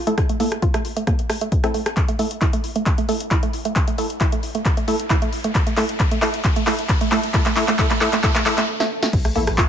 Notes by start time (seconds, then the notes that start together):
0.07 A3 E4 A4, closed hi-hat
0.18 kick, cross-stick, closed hi-hat
0.29 A3, closed hi-hat
0.40 A3 A#3 E4 A4, open hi-hat
0.52 cross-stick, closed hi-hat
0.62 F4, kick, closed hi-hat
0.74 A3, cross-stick, closed hi-hat
0.85 open hi-hat
0.97 A3, closed hi-hat
1.07 A#3, kick, cross-stick, closed hi-hat
1.19 closed hi-hat
1.30 A3, cross-stick, open hi-hat
1.41 A3, closed hi-hat
1.52 kick, closed hi-hat
1.64 A3 C4 E4 A4, cross-stick, closed hi-hat
1.74 A3, open hi-hat
1.86 cross-stick, closed hi-hat
1.97 kick, clap, closed hi-hat, riser
2.08 A3, closed hi-hat
2.19 A3 E4 A4, open hi-hat
2.31 closed hi-hat
2.41 E4, kick, clap, closed hi-hat
2.53 A3, closed hi-hat
2.64 open hi-hat
2.76 A3, closed hi-hat
2.86 kick, clap, closed hi-hat
2.98 A3, closed hi-hat
3.09 A3 E4 A4, open hi-hat
3.20 closed hi-hat
3.31 E4, kick, clap, closed hi-hat
3.43 A3, closed hi-hat
3.53 open hi-hat
3.65 A3, closed hi-hat
3.76 kick, clap, closed hi-hat
3.88 A3, closed hi-hat
3.98 A3 E4 A4, open hi-hat
4.10 closed hi-hat
4.21 E4, kick, clap, closed hi-hat
4.32 A3, closed hi-hat
4.43 open hi-hat
4.55 A3, closed hi-hat
4.65 kick, clap, closed hi-hat
4.77 A3, closed hi-hat
4.88 A3 E4 A4, open hi-hat
5.00 closed hi-hat
5.10 E4, kick, clap, closed hi-hat
5.22 A3, closed hi-hat
5.33 open hi-hat
5.44 A3, closed hi-hat
5.55 kick, clap, closed hi-hat
5.67 A3, closed hi-hat
5.77 A3 E4 A4, clap, open hi-hat
5.89 closed hi-hat
6.00 kick, clap, closed hi-hat
6.11 A3, closed hi-hat
6.22 A3 E4 A4, clap, open hi-hat
6.34 closed hi-hat
6.44 kick, clap, closed hi-hat
6.56 A3, closed hi-hat
6.67 A3 E4 A4, clap, open hi-hat
6.79 closed hi-hat
6.89 kick, clap, closed hi-hat
7.01 A3, closed hi-hat
7.12 A3 E4 A4, clap, open hi-hat
7.23 closed hi-hat
7.34 A3 E4 A4, kick, clap, closed hi-hat
7.46 A3, clap, closed hi-hat
7.56 A3 E4 A4, clap, open hi-hat
7.68 A3, clap, closed hi-hat
7.79 A3 E4 A4, kick, clap, closed hi-hat
7.91 A3, clap, closed hi-hat
8.01 A3 E4 A4, clap, open hi-hat
8.13 A3, clap, closed hi-hat
8.23 A3 E4 A4, kick, clap, closed hi-hat, swell
8.35 A3, clap, closed hi-hat
8.46 A3 E4 A4, clap, open hi-hat
8.58 A3, clap, closed hi-hat
8.80 A3, snare
9.03 A3, snare
9.13 kick, closed hi-hat, crash, sub drop
9.25 A3, cross-stick, closed hi-hat
9.35 A1 A3 A#3 E4 A4, open hi-hat
9.47 A1, cross-stick, closed hi-hat
9.58 F4, kick, clap, closed hi-hat